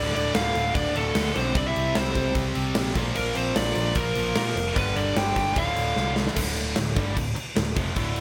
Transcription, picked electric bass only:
0, 0, Header, 1, 3, 480
1, 0, Start_track
1, 0, Key_signature, -1, "minor"
1, 0, Tempo, 400802
1, 1856, Time_signature, 4, 2, 24, 8
1, 9826, End_track
2, 0, Start_track
2, 0, Title_t, "Picked electric bass"
2, 0, Program_c, 0, 34
2, 0, Note_on_c, 0, 26, 107
2, 131, Note_off_c, 0, 26, 0
2, 181, Note_on_c, 0, 26, 97
2, 367, Note_off_c, 0, 26, 0
2, 416, Note_on_c, 0, 26, 98
2, 604, Note_off_c, 0, 26, 0
2, 659, Note_on_c, 0, 26, 95
2, 845, Note_off_c, 0, 26, 0
2, 903, Note_on_c, 0, 26, 95
2, 1087, Note_off_c, 0, 26, 0
2, 1144, Note_on_c, 0, 26, 96
2, 1328, Note_off_c, 0, 26, 0
2, 1388, Note_on_c, 0, 38, 101
2, 1570, Note_off_c, 0, 38, 0
2, 1630, Note_on_c, 0, 35, 96
2, 1812, Note_off_c, 0, 35, 0
2, 1860, Note_on_c, 0, 36, 100
2, 2045, Note_off_c, 0, 36, 0
2, 2107, Note_on_c, 0, 36, 91
2, 2290, Note_off_c, 0, 36, 0
2, 2348, Note_on_c, 0, 36, 96
2, 2530, Note_off_c, 0, 36, 0
2, 2585, Note_on_c, 0, 36, 92
2, 2768, Note_off_c, 0, 36, 0
2, 2822, Note_on_c, 0, 36, 100
2, 3006, Note_off_c, 0, 36, 0
2, 3068, Note_on_c, 0, 36, 88
2, 3250, Note_off_c, 0, 36, 0
2, 3307, Note_on_c, 0, 34, 100
2, 3489, Note_off_c, 0, 34, 0
2, 3546, Note_on_c, 0, 34, 101
2, 3728, Note_off_c, 0, 34, 0
2, 3805, Note_on_c, 0, 34, 109
2, 3980, Note_off_c, 0, 34, 0
2, 4031, Note_on_c, 0, 34, 93
2, 4211, Note_off_c, 0, 34, 0
2, 4276, Note_on_c, 0, 34, 96
2, 4454, Note_off_c, 0, 34, 0
2, 4506, Note_on_c, 0, 34, 96
2, 4688, Note_off_c, 0, 34, 0
2, 4738, Note_on_c, 0, 34, 103
2, 4923, Note_off_c, 0, 34, 0
2, 4981, Note_on_c, 0, 34, 98
2, 5165, Note_off_c, 0, 34, 0
2, 5220, Note_on_c, 0, 46, 96
2, 5404, Note_off_c, 0, 46, 0
2, 5456, Note_on_c, 0, 29, 102
2, 5642, Note_off_c, 0, 29, 0
2, 5705, Note_on_c, 0, 31, 106
2, 5888, Note_off_c, 0, 31, 0
2, 5945, Note_on_c, 0, 31, 92
2, 6128, Note_off_c, 0, 31, 0
2, 6179, Note_on_c, 0, 31, 100
2, 6364, Note_off_c, 0, 31, 0
2, 6420, Note_on_c, 0, 31, 95
2, 6605, Note_off_c, 0, 31, 0
2, 6667, Note_on_c, 0, 26, 94
2, 6849, Note_off_c, 0, 26, 0
2, 6909, Note_on_c, 0, 26, 91
2, 7090, Note_off_c, 0, 26, 0
2, 7151, Note_on_c, 0, 36, 97
2, 7519, Note_off_c, 0, 36, 0
2, 7620, Note_on_c, 0, 26, 105
2, 8065, Note_off_c, 0, 26, 0
2, 8098, Note_on_c, 0, 26, 82
2, 8320, Note_off_c, 0, 26, 0
2, 8343, Note_on_c, 0, 31, 107
2, 8563, Note_off_c, 0, 31, 0
2, 8585, Note_on_c, 0, 26, 85
2, 8805, Note_off_c, 0, 26, 0
2, 9067, Note_on_c, 0, 26, 86
2, 9286, Note_off_c, 0, 26, 0
2, 9297, Note_on_c, 0, 29, 98
2, 9522, Note_off_c, 0, 29, 0
2, 9537, Note_on_c, 0, 26, 104
2, 9826, Note_off_c, 0, 26, 0
2, 9826, End_track
3, 0, Start_track
3, 0, Title_t, "Muted picked electric bass strokes"
3, 8836, Note_on_c, 9, 29, 43
3, 8956, Note_off_c, 9, 29, 0
3, 9826, End_track
0, 0, End_of_file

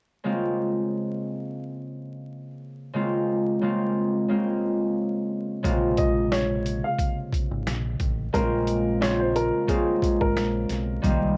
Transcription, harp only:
0, 0, Header, 1, 2, 480
1, 0, Start_track
1, 0, Key_signature, -5, "minor"
1, 0, Tempo, 674157
1, 178, Time_signature, 4, 2, 24, 8
1, 8097, End_track
2, 0, Start_track
2, 0, Title_t, "Harp"
2, 0, Program_c, 0, 46
2, 168, Note_on_c, 0, 49, 85
2, 171, Note_on_c, 0, 56, 77
2, 174, Note_on_c, 0, 58, 78
2, 178, Note_on_c, 0, 60, 87
2, 181, Note_on_c, 0, 65, 99
2, 1977, Note_off_c, 0, 65, 0
2, 2083, Note_off_c, 0, 49, 0
2, 2085, Note_off_c, 0, 56, 0
2, 2089, Note_on_c, 0, 49, 94
2, 2095, Note_off_c, 0, 58, 0
2, 2096, Note_on_c, 0, 56, 87
2, 2098, Note_on_c, 0, 58, 80
2, 2099, Note_off_c, 0, 60, 0
2, 2102, Note_on_c, 0, 60, 77
2, 2105, Note_on_c, 0, 65, 100
2, 2543, Note_off_c, 0, 58, 0
2, 2545, Note_off_c, 0, 60, 0
2, 2547, Note_off_c, 0, 65, 0
2, 2564, Note_off_c, 0, 49, 0
2, 2568, Note_off_c, 0, 56, 0
2, 2572, Note_on_c, 0, 49, 90
2, 2575, Note_on_c, 0, 56, 81
2, 2580, Note_on_c, 0, 58, 86
2, 2583, Note_on_c, 0, 60, 85
2, 2587, Note_on_c, 0, 65, 93
2, 3024, Note_off_c, 0, 58, 0
2, 3026, Note_off_c, 0, 60, 0
2, 3028, Note_off_c, 0, 65, 0
2, 3041, Note_off_c, 0, 49, 0
2, 3045, Note_off_c, 0, 56, 0
2, 3049, Note_on_c, 0, 49, 88
2, 3054, Note_on_c, 0, 56, 82
2, 3056, Note_on_c, 0, 58, 86
2, 3059, Note_on_c, 0, 60, 78
2, 3064, Note_on_c, 0, 65, 92
2, 3998, Note_off_c, 0, 49, 0
2, 4001, Note_off_c, 0, 56, 0
2, 4006, Note_on_c, 0, 49, 93
2, 4010, Note_off_c, 0, 58, 0
2, 4010, Note_on_c, 0, 56, 81
2, 4013, Note_on_c, 0, 58, 88
2, 4016, Note_on_c, 0, 48, 93
2, 4017, Note_off_c, 0, 65, 0
2, 4020, Note_on_c, 0, 65, 106
2, 4049, Note_off_c, 0, 60, 0
2, 5816, Note_off_c, 0, 65, 0
2, 5921, Note_off_c, 0, 49, 0
2, 5923, Note_off_c, 0, 56, 0
2, 5928, Note_on_c, 0, 49, 96
2, 5931, Note_off_c, 0, 58, 0
2, 5934, Note_on_c, 0, 56, 92
2, 5934, Note_on_c, 0, 58, 83
2, 5941, Note_on_c, 0, 60, 82
2, 5943, Note_on_c, 0, 65, 104
2, 5973, Note_off_c, 0, 48, 0
2, 6382, Note_off_c, 0, 58, 0
2, 6384, Note_off_c, 0, 60, 0
2, 6386, Note_off_c, 0, 65, 0
2, 6403, Note_off_c, 0, 49, 0
2, 6406, Note_off_c, 0, 56, 0
2, 6412, Note_on_c, 0, 49, 95
2, 6415, Note_on_c, 0, 56, 83
2, 6418, Note_on_c, 0, 58, 88
2, 6422, Note_on_c, 0, 60, 87
2, 6426, Note_on_c, 0, 65, 99
2, 6863, Note_off_c, 0, 58, 0
2, 6865, Note_off_c, 0, 60, 0
2, 6867, Note_off_c, 0, 65, 0
2, 6880, Note_off_c, 0, 49, 0
2, 6883, Note_off_c, 0, 56, 0
2, 6888, Note_on_c, 0, 49, 90
2, 6892, Note_on_c, 0, 56, 88
2, 6896, Note_on_c, 0, 58, 92
2, 6899, Note_on_c, 0, 60, 87
2, 6902, Note_on_c, 0, 65, 100
2, 7844, Note_on_c, 0, 51, 99
2, 7848, Note_on_c, 0, 55, 89
2, 7849, Note_off_c, 0, 58, 0
2, 7852, Note_off_c, 0, 60, 0
2, 7852, Note_on_c, 0, 58, 90
2, 7855, Note_on_c, 0, 60, 90
2, 7859, Note_on_c, 0, 63, 102
2, 7893, Note_off_c, 0, 49, 0
2, 7893, Note_off_c, 0, 56, 0
2, 8097, Note_off_c, 0, 51, 0
2, 8097, Note_off_c, 0, 55, 0
2, 8097, Note_off_c, 0, 58, 0
2, 8097, Note_off_c, 0, 60, 0
2, 8097, Note_off_c, 0, 63, 0
2, 8097, Note_off_c, 0, 65, 0
2, 8097, End_track
0, 0, End_of_file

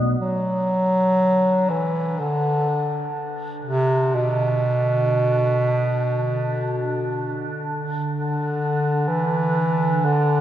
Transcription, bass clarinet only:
0, 0, Header, 1, 2, 480
1, 0, Start_track
1, 0, Tempo, 500000
1, 9991, End_track
2, 0, Start_track
2, 0, Title_t, "Bass clarinet"
2, 0, Program_c, 0, 71
2, 200, Note_on_c, 0, 54, 86
2, 1628, Note_on_c, 0, 52, 71
2, 1642, Note_off_c, 0, 54, 0
2, 2109, Note_on_c, 0, 50, 72
2, 2124, Note_off_c, 0, 52, 0
2, 3046, Note_off_c, 0, 50, 0
2, 3503, Note_on_c, 0, 48, 92
2, 3982, Note_on_c, 0, 47, 93
2, 3996, Note_off_c, 0, 48, 0
2, 7288, Note_off_c, 0, 47, 0
2, 7798, Note_on_c, 0, 50, 72
2, 8719, Note_on_c, 0, 52, 84
2, 8734, Note_off_c, 0, 50, 0
2, 9649, Note_on_c, 0, 50, 82
2, 9664, Note_off_c, 0, 52, 0
2, 9991, Note_off_c, 0, 50, 0
2, 9991, End_track
0, 0, End_of_file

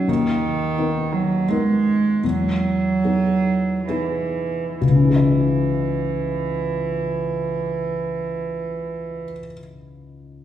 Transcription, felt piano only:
0, 0, Header, 1, 2, 480
1, 0, Start_track
1, 0, Tempo, 700117
1, 54, Time_signature, 3, 2, 24, 8
1, 1016, Tempo, 750000
1, 1496, Tempo, 794702
1, 1976, Tempo, 858369
1, 2456, Tempo, 950872
1, 5767, End_track
2, 0, Start_track
2, 0, Title_t, "Felt piano"
2, 0, Program_c, 0, 0
2, 0, Control_c, 0, 64, 127
2, 0, Note_on_c, 0, 39, 43
2, 0, Note_on_c, 0, 61, 35
2, 0, Note_on_c, 0, 63, 38
2, 0, Note_on_c, 0, 66, 39
2, 53, Note_off_c, 0, 39, 0
2, 53, Note_on_c, 0, 39, 46
2, 66, Control_c, 0, 64, 0
2, 72, Note_off_c, 0, 63, 0
2, 72, Note_off_c, 0, 66, 0
2, 73, Note_off_c, 0, 61, 0
2, 165, Control_c, 0, 64, 127
2, 513, Note_off_c, 0, 39, 0
2, 531, Note_on_c, 0, 59, 35
2, 534, Note_on_c, 0, 63, 39
2, 536, Note_on_c, 0, 70, 40
2, 990, Note_off_c, 0, 59, 0
2, 992, Note_off_c, 0, 63, 0
2, 993, Note_off_c, 0, 70, 0
2, 1025, Note_on_c, 0, 59, 37
2, 1027, Note_on_c, 0, 63, 39
2, 1030, Note_on_c, 0, 70, 42
2, 1475, Note_off_c, 0, 59, 0
2, 1476, Note_off_c, 0, 63, 0
2, 1478, Note_off_c, 0, 70, 0
2, 1497, Note_on_c, 0, 40, 38
2, 1508, Control_c, 0, 64, 0
2, 1637, Control_c, 0, 64, 127
2, 1962, Note_off_c, 0, 40, 0
2, 1982, Note_on_c, 0, 59, 31
2, 1984, Note_on_c, 0, 63, 30
2, 1987, Note_on_c, 0, 68, 35
2, 2436, Note_off_c, 0, 59, 0
2, 2437, Note_off_c, 0, 63, 0
2, 2439, Note_off_c, 0, 68, 0
2, 2454, Note_on_c, 0, 59, 30
2, 2457, Note_on_c, 0, 63, 26
2, 2458, Note_on_c, 0, 68, 29
2, 2905, Note_off_c, 0, 59, 0
2, 2907, Note_off_c, 0, 63, 0
2, 2907, Note_off_c, 0, 68, 0
2, 2924, Note_on_c, 0, 37, 27
2, 2940, Control_c, 0, 64, 0
2, 2958, Note_on_c, 0, 49, 28
2, 2995, Note_on_c, 0, 61, 28
2, 3028, Note_on_c, 0, 63, 26
2, 3065, Note_on_c, 0, 68, 27
2, 3066, Control_c, 0, 64, 127
2, 3100, Note_on_c, 0, 75, 26
2, 5159, Note_off_c, 0, 37, 0
2, 5193, Note_off_c, 0, 49, 0
2, 5230, Note_off_c, 0, 61, 0
2, 5263, Note_off_c, 0, 63, 0
2, 5300, Note_off_c, 0, 68, 0
2, 5335, Note_off_c, 0, 75, 0
2, 5767, End_track
0, 0, End_of_file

